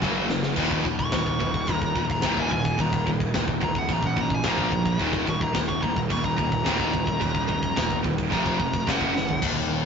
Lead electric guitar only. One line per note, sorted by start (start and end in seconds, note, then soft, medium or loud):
0.99 1.72 C#6 loud
1.72 2.07 A#5 loud
2.12 2.38 A#5 medium
2.41 2.51 G#5 loud
2.52 2.79 G#5 loud
2.81 3.07 A#5 loud
3.64 3.76 A#5 loud
3.79 3.91 F#5 loud
3.93 4.04 A#5 loud
4.06 4.18 F#5 medium
4.21 4.32 A#5 medium
4.35 4.46 G#5 medium
4.49 5.00 A#5 loud
5.30 5.42 C#6 loud
5.42 5.55 A#5 medium
5.68 5.82 C#6 loud
5.83 5.96 A#5 loud
6.12 6.24 C#6 loud
6.25 6.36 A#5 loud
6.37 8.00 A#5 loud
8.33 8.86 A#5 loud
8.90 9.42 F#5 loud